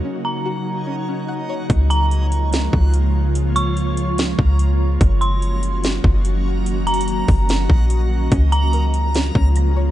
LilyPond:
<<
  \new Staff \with { instrumentName = "Synth bell" } { \time 4/4 \key des \major \tempo 4 = 145 r8 bes''2.~ bes''8 | r8 bes''4. r2 | r8 des'''2.~ des'''8 | r8 c'''4. r2 |
r8 bes''2.~ bes''8 | r8 bes''4. r2 | }
  \new Staff \with { instrumentName = "Synth texture" } { \time 4/4 \key des \major << { ges''1 | bes''1~ | bes''1~ | bes''1~ |
bes''1~ | bes''1 | } \\ { <ees' des''>1 | <f' des''>1~ | <f' des''>1 | <ges' ees''>1~ |
<ges' ees''>1 | <f' des''>1 | } >> }
  \new Staff \with { instrumentName = "Synth pluck" } { \time 4/4 \key des \major <des' des'' ges''>4 ges'4 des'8 des'8 ges''8 des''8 | r1 | r1 | r1 |
r1 | des'4 bes'4 des'8 des'8 bes''8 des''8 | }
  \new Staff \with { instrumentName = "Ambient pad" } { \clef bass \time 4/4 \key des \major <des ges bes ees' ges'>1 | <des f aes bes f'>1~ | <des f aes bes f'>1 | <ees ges des' ges'>1~ |
<ees ges des' ges'>1 | <des f aes f'>1 | }
  \new Staff \with { instrumentName = "808-style bass" } { \clef bass \time 4/4 \key des \major r1 | des,2~ des,8 des,4.~ | des,2~ des,8 des,4. | ges,,2~ ges,,8 ges,,4.~ |
ges,,4. ges,,4 bes,,4. | des,2~ des,8 des,4. | }
  \new DrumStaff \with { instrumentName = "Drums" } \drummode { \time 4/4 r4 r4 r4 r4 | <hh bd>8 hh8 hh8 hh8 <hh sn>8 bd8 hh4 | hh8 hh8 hh8 hh8 <hh sn>8 bd8 hh4 | <hh bd>8 hh8 hh8 hh8 <hh sn>8 bd8 hh4 |
\tuplet 3/2 { hh16 r16 r16 hh16 hh16 hh16 } hh8 <hho bd>8 <hh sn>8 bd8 hh4 | <hh bd>8 hh8 hh8 hh8 <hh sn>8 bd8 hh4 | }
>>